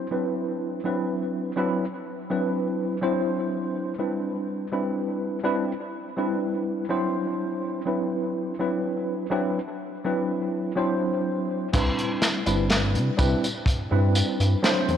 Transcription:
0.11 tine electric piano F#3 C4 D4 E4 B4
0.84 tine electric piano F#3 C4 D4 E4 B4
1.56 tine electric piano F#3 C4 D4 E4 B4
2.30 tine electric piano F#3 C4 D4 E4 B4
3.02 tine electric piano F#3 C4 D4 E4 C5
3.98 tine electric piano G3 C4 D4 E4 B4
4.72 tine electric piano G3 C4 D4 E4 B4
5.43 tine electric piano G3 C4 D4 E4 B4
6.17 tine electric piano G3 C4 D4 E4 B4
6.89 tine electric piano F#3 C4 D4 E4 C5
7.85 tine electric piano F#3 C4 D4 E4 B4
8.59 tine electric piano F#3 C4 D4 E4 B4
9.30 tine electric piano F#3 C4 D4 E4 B4
10.04 tine electric piano F#3 C4 D4 E4 B4
10.76 tine electric piano F#3 C4 D4 E4 C5
11.73 analog synth bass C2, tine electric piano G3 C4 D4 E4 B4, kick, closed hi-hat, tambourine, crash
11.99 closed hi-hat
12.22 snare, closed hi-hat, tambourine
12.46 analog synth bass G1, tine electric piano G3 C4 D4 E4 B4, closed hi-hat, tambourine
12.70 snare, closed hi-hat, tambourine
12.95 analog synth bass C3, closed hi-hat
13.17 analog synth bass C2, tine electric piano G3 C4 D4 E4 B4, kick, closed hi-hat, tambourine
13.44 closed hi-hat, tambourine
13.66 analog synth bass G2, kick, closed hi-hat, tambourine
13.91 analog synth bass G2, tine electric piano G3 C4 D4 E4 B4
14.15 closed hi-hat, tambourine
14.40 analog synth bass G2, closed hi-hat, tambourine
14.62 tine electric piano F#3 C4 D4 E4 C5, snare, closed hi-hat, tambourine
14.88 analog synth bass E2, closed hi-hat

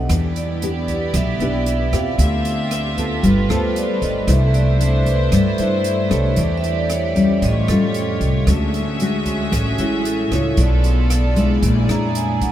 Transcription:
Already playing: nylon-string guitar B3 D4 G4, vibraphone D#5 F#5
0.09 upright bass E2, nylon-string guitar E3, string section B3 E4 G4 D5, kick, cross-stick, closed hi-hat
0.36 vibraphone D5, closed hi-hat
0.62 nylon-string guitar B3 D4 G4, closed hi-hat
0.88 kick, closed hi-hat
1.14 upright bass B1, nylon-string guitar B2, vibraphone E5, kick, cross-stick, closed hi-hat
1.39 upright bass B1, nylon-string guitar B3 D4 G4, vibraphone D5, closed hi-hat
1.66 vibraphone E5, closed hi-hat
1.92 upright bass E2, nylon-string guitar C4 F4 G4, vibraphone F5, kick, cross-stick, closed hi-hat
2.18 upright bass D2, nylon-string guitar D3, string section C4 F4 G4 E5, kick, closed hi-hat
2.45 closed hi-hat
2.71 cross-stick, closed hi-hat
2.97 nylon-string guitar B3 F4 A4, kick, closed hi-hat
3.23 upright bass G1, nylon-string guitar G3, string section A3 B4, vibraphone B4, kick, closed hi-hat
3.49 upright bass D2, nylon-string guitar B3 F4 A4, vibraphone C5, cross-stick, closed hi-hat
3.76 vibraphone D5, closed hi-hat
4.02 upright bass G1, vibraphone D#5, kick, closed hi-hat
4.27 upright bass C2, nylon-string guitar C3 A3 D4 E4, string section D4 E4 C5, vibraphone E5, kick, cross-stick, closed hi-hat
4.54 vibraphone D5, closed hi-hat
4.80 nylon-string guitar A3 D4 E4, vibraphone C5, closed hi-hat
5.06 vibraphone B4, kick, closed hi-hat
5.32 upright bass G2, nylon-string guitar G3, vibraphone A4, kick, cross-stick, closed hi-hat
5.58 upright bass G2, nylon-string guitar A3 D4 E4, vibraphone C5, closed hi-hat
5.84 vibraphone E5, closed hi-hat
6.09 upright bass C2, nylon-string guitar A3 D4 G4, vibraphone C#5, kick, cross-stick, closed hi-hat
6.36 upright bass E2, nylon-string guitar E3, string section G4 D5, vibraphone D5, kick, closed hi-hat
6.58 vibraphone E5
6.64 closed hi-hat
6.75 vibraphone D5
6.90 vibraphone C#5, cross-stick, closed hi-hat
7.15 nylon-string guitar G3 C#4 F4, vibraphone D5, kick, closed hi-hat
7.42 upright bass A1, nylon-string guitar A2, string section A3 F4 G4 C#5, vibraphone D#5, kick, closed hi-hat
7.68 upright bass F2, nylon-string guitar G3 C#4 F4, vibraphone A4, cross-stick, closed hi-hat
7.94 closed hi-hat
8.20 upright bass C2, kick, closed hi-hat
8.47 upright bass D2, nylon-string guitar D3 G#3 C#4 F#4, string section C#4 F#4 G#4 E5, kick, cross-stick, closed hi-hat
8.74 closed hi-hat
9.00 nylon-string guitar G#3 C#4 F#4, closed hi-hat
9.26 kick, closed hi-hat
9.52 upright bass A1, nylon-string guitar A2, kick, cross-stick, closed hi-hat
9.78 upright bass A1, nylon-string guitar G#3 C#4 F#4, vibraphone E4, closed hi-hat
10.05 vibraphone A4, closed hi-hat
10.31 upright bass C#2, nylon-string guitar A3 D4 F4, vibraphone C#5, kick, cross-stick, closed hi-hat
10.57 upright bass B1, nylon-string guitar B2, string section B3 F4 A4 D5, vibraphone D5, kick, closed hi-hat
10.84 closed hi-hat
11.10 cross-stick, closed hi-hat
11.36 nylon-string guitar G#3 D4 E4, kick, closed hi-hat
11.62 upright bass A#1, nylon-string guitar A#2, string section A#3 E4 G#4, kick, closed hi-hat
11.88 upright bass F2, nylon-string guitar G#3 D4 E4, vibraphone A#5, cross-stick, closed hi-hat
12.15 vibraphone G#5, closed hi-hat
12.41 upright bass A#1, vibraphone F#5, kick, closed hi-hat

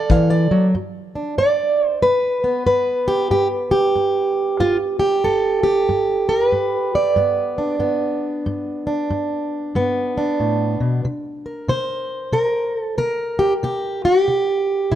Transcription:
Already playing: steel-string acoustic guitar A4 D5
0.10 steel-string acoustic guitar E3 F5, kick
0.30 steel-string acoustic guitar D5
0.51 steel-string acoustic guitar F#3
0.75 steel-string acoustic guitar G2
1.15 steel-string acoustic guitar D4
1.38 steel-string acoustic guitar G2 D5
1.87 steel-string acoustic guitar C5
2.02 steel-string acoustic guitar G2 B4
2.44 steel-string acoustic guitar B3
2.66 steel-string acoustic guitar G2 B4
3.08 steel-string acoustic guitar G4
3.31 steel-string acoustic guitar G2 G4
3.71 steel-string acoustic guitar G4
3.95 steel-string acoustic guitar G2
4.60 steel-string acoustic guitar G2 F4
4.99 steel-string acoustic guitar G4
5.24 steel-string acoustic guitar G2 A4
5.63 steel-string acoustic guitar G4
5.89 steel-string acoustic guitar G2
6.29 steel-string acoustic guitar A#4
6.49 steel-string acoustic guitar G2 B4
6.95 steel-string acoustic guitar D5
7.16 steel-string acoustic guitar G2 B3
7.58 steel-string acoustic guitar D4
7.79 steel-string acoustic guitar G2 B3
8.46 steel-string acoustic guitar G2
8.87 steel-string acoustic guitar D4
9.10 steel-string acoustic guitar G2
9.75 steel-string acoustic guitar G2 B3
10.18 steel-string acoustic guitar D4
10.40 steel-string acoustic guitar A2
10.80 steel-string acoustic guitar B2
11.05 steel-string acoustic guitar C3
11.46 steel-string acoustic guitar A#4
11.68 steel-string acoustic guitar C3 C5
12.33 steel-string acoustic guitar C3 A#4
12.78 steel-string acoustic guitar A4
12.98 steel-string acoustic guitar C3 A#4
13.39 steel-string acoustic guitar G4
13.63 steel-string acoustic guitar C3 G4
14.05 steel-string acoustic guitar G4
14.28 steel-string acoustic guitar C3
14.92 steel-string acoustic guitar C3 E4

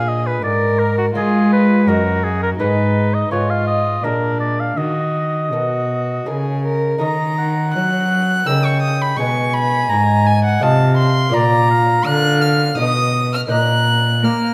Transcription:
Already playing: lute A#2 A#3 D4 F4, cello A#2, violin G#4, oboe F5
0.09 oboe D#5
0.27 oboe B4
0.42 lute G#2, cello G#2, violin A#4, oboe D5
0.79 oboe A#4
0.98 oboe F#4
1.15 lute G#3 A#3 F4, cello G#3, violin F4, oboe G#4
1.53 oboe B4
1.86 cello F#2, lute F#2 A#3 D#4 F#4, violin F#4, oboe A#4
2.24 oboe G#4
2.43 oboe A#4
2.58 cello G#2, lute G#2 G#3 D#4 B4, violin D#4, oboe B4
3.14 oboe D#5
3.31 cello G#2, lute G#2 G#3 F4 B4, violin F4, oboe C#5
3.50 oboe F5
3.67 oboe D#5
4.04 cello A#2, lute A#2 G#3 D4 A#4, violin D4, oboe A#4
4.40 oboe D5
4.60 oboe F5
4.77 cello D#3, lute D#3, violin F#4, oboe D#5
5.52 cello B2, lute B2 D#4 A#4, violin F#4
6.26 lute C#3 D#4 A#4, cello C#3, violin G#4
6.66 violin A#4
6.98 lute D#3 D#4 A#4, cello D#3, oboe D#5, violin A#5
7.38 oboe F#5
7.74 cello F#3, lute F#3, violin F#6
8.46 cello C#3, lute C#3 D#4 A#4, oboe G5, violin E6
8.65 violin C#6
8.82 violin D#6
9.01 violin B5
9.16 cello B2, lute G#3 D#4 B4, oboe G#5, violin C#6
9.20 lute B2
9.54 violin B5
9.90 cello G#2, lute G#2, violin A#5
10.27 violin G#5
10.45 violin F#5
10.60 lute C3 F4 D#5, cello C3, oboe F5, violin A5
10.97 violin C6
11.29 lute A#3 F4 D5
11.34 lute A#2, cello A#2, oboe D5, violin A#5
11.71 oboe F5
12.06 lute D3, cello D3, violin F#6
12.41 violin F6
12.76 cello B2, lute B2 D#4 D#5, oboe D#5, violin D#6
13.34 violin F6
13.47 cello A#2, lute A#3 D#4 D#5, violin F#6
13.51 lute A#2, oboe A#5
14.23 cello A#3, lute A#3, oboe A#5, violin F6

